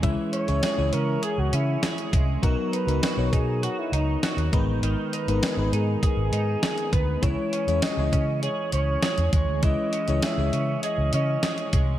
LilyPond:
<<
  \new Staff \with { instrumentName = "Flugelhorn" } { \time 4/4 \key cis \minor \tempo 4 = 100 r8 cis''4 ais'8 gis'16 fis'16 e'4 r8 | r8 b'4 gis'8 fis'16 e'16 dis'4 r8 | r8 b'4 gis'8 gis'4. b'8 | cis''4 dis''4 cis''8 cis''4 cis''8 |
dis''4 e''4 dis''8 dis''4 r8 | }
  \new Staff \with { instrumentName = "Clean electric guitar" } { \time 4/4 \key cis \minor <e gis cis' gis'>8 cis'8 gis'8 cis'8 gis'8 cis'8 gis'8 gis8 | fis8 dis'8 fis'8 dis'8 fis'8 dis'8 fis'8 dis8 | dis8 dis'8 gis'8 dis'8 gis'8 dis'8 gis'8 b8 | e8 cis'8 gis'8 cis'8 gis'8 cis'8 gis'8 gis8 |
e8 cis'8 gis'8 cis'8 gis'8 cis'8 gis'8 gis8 | }
  \new Staff \with { instrumentName = "FM electric piano" } { \time 4/4 \key cis \minor <gis cis' e' e''>8 r16 <gis cis' e' cis''>16 r16 <gis cis' e' cis''>4~ <gis cis' e' cis''>16 r4. | <fis b dis' ais'>8 r16 <fis b dis' ais'>16 r16 <fis b dis' cis''>4~ <fis b dis' cis''>16 r4 <gis b dis' b'>8~ | <gis b dis' b'>8 r16 <gis b dis' ais'>16 r16 <gis b dis' b'>4~ <gis b dis' b'>16 r4. | <gis cis' e' cis''>8 r16 <gis cis' e' cis''>16 r16 <gis cis' e' cis''>4~ <gis cis' e' cis''>16 r4. |
<gis cis' e' cis''>8 r16 <gis cis' e' cis''>16 r16 <gis cis' e' cis''>4~ <gis cis' e' cis''>16 r4. | }
  \new Staff \with { instrumentName = "Fingered electric bass" } { \clef bass \time 4/4 \key cis \minor cis,16 r8 cis,16 r16 cis,16 cis8 r16 cis,16 cis8 r8 bis,,8 | b,,16 r8 cis,16 r16 b,,16 b,8. r16 cis,8 r16 dis,16 gis,,16 a,,16 | gis,,16 r8 gis,,16 r16 gis,,16 gis,8 r16 gis,,16 gis,8 r8 d,8 | cis,16 r8 e,16 r16 cis,16 cis8. r16 cis,8 r16 e,16 dis,16 d,16 |
cis,16 r8 cis,16 r16 cis,16 cis8 r16 cis,16 cis8 r8 bis,,8 | }
  \new DrumStaff \with { instrumentName = "Drums" } \drummode { \time 4/4 <hh bd>8 hh16 hh16 <hh sn>8 hh8 hh8 hh8 <hh sn>16 hh16 <hh bd>8 | <hh bd>8 hh16 hh16 <hh sn>8 <hh bd>8 hh8 hh8 <hh sn>16 hh16 <hh bd>8 | hh8 hh16 hh16 <hh sn>8 hh8 <hh bd>8 hh8 <hh sn>16 hh16 <hh bd>8 | <hh bd>8 hh16 hh16 <hh sn>8 <hh bd>8 hh8 hh8 <hh sn>16 hh16 <hh bd>8 |
<hh bd>8 hh16 hh16 <hh sn>8 hh8 hh8 hh8 <hh sn>16 hh16 <hh bd>8 | }
>>